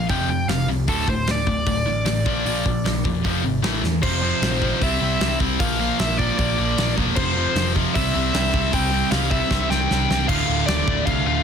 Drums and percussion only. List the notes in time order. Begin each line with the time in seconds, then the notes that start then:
0.09 kick, open hi-hat
0.49 snare, open hi-hat
0.88 kick, open hi-hat
1.08 kick
1.27 snare, open hi-hat
1.47 kick
1.66 kick, open hi-hat
2.06 snare, open hi-hat
2.26 kick
2.46 open hi-hat
2.66 kick
2.86 snare, open hi-hat
3.05 kick
3.25 kick, open hi-hat
3.64 snare, open hi-hat
3.84 snare
4.03 kick, crash
4.42 snare, open hi-hat
4.62 kick
4.82 kick, open hi-hat
5.21 snare, open hi-hat
5.40 kick
5.60 kick, open hi-hat
5.99 snare, open hi-hat
6.19 kick
6.38 kick, open hi-hat
6.78 snare, open hi-hat
6.98 kick
7.16 kick, crash
7.56 snare, open hi-hat
7.76 kick
7.95 kick, open hi-hat
8.34 snare, open hi-hat
8.54 kick
8.73 kick, open hi-hat
9.11 snare, open hi-hat
9.31 kick
9.51 kick, snare
9.71 snare
9.91 snare
10.11 snare
10.29 kick, crash
10.68 snare, crash
10.88 kick
11.07 kick, crash